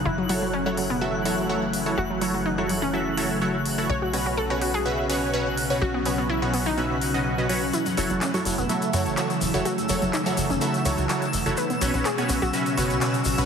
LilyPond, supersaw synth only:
\new Staff \with { instrumentName = "Supersaw synth" } { \time 4/4 \key fis \dorian \tempo 4 = 125 r8 <fis e' fis' a' cis''>8 r16 <fis e' fis' a' cis''>8 r16 <fis e' fis' a' e''>8 <fis e' fis' a' cis''>8 <fis e' fis' a' cis''>16 r8 <fis e' fis' a' cis''>16 | r8 <fis e' fis' a' cis''>8 r16 <fis e' fis' a' cis''>8 r16 <fis e' fis' a' e''>8 <fis e' fis' a' cis''>8 <fis e' fis' a' cis''>16 r8 <e' fis' a' cis''>16 | r8 <b, cis' fis' b' cis''>8 r16 <b, cis' fis' b' cis''>8 r16 <b, cis' fis' b' e''>8 <b, cis' fis' b' cis''>8 <b, cis' fis' b' cis''>16 r8 <b, cis' fis' b' cis''>16 | r8 <b, cis' fis' b' cis''>8 r16 <b, cis' fis' b' cis''>8 r16 <b, cis' fis' b' e''>8 r16 <b, cis' fis' b' dis''>8 <b, cis' fis' b' dis''>16 <fis cis' fis' b' cis''>16 r16 |
r8 <fis e' fis' a' cis''>8 r16 <fis e' fis' a' cis''>8 r16 <fis e' fis' a' e''>8 <fis e' fis' a' cis''>8 <fis e' fis' a' cis''>16 r8 <fis e' fis' a' cis''>16 | r8 <fis e' fis' a' cis''>8 r16 <fis e' fis' a' cis''>8 r16 <fis e' fis' a' e''>8 <fis e' fis' a' cis''>8 <fis e' fis' a' cis''>16 r8 <e' fis' a' cis''>16 | r8 <b, cis' fis' b' cis''>8 r16 <b, cis' fis' b' cis''>8 r16 <b, cis' fis' b' e''>8 <b, cis' fis' b' cis''>8 <b, cis' fis' b' cis''>16 r8 <b, cis' fis' b' cis''>16 | }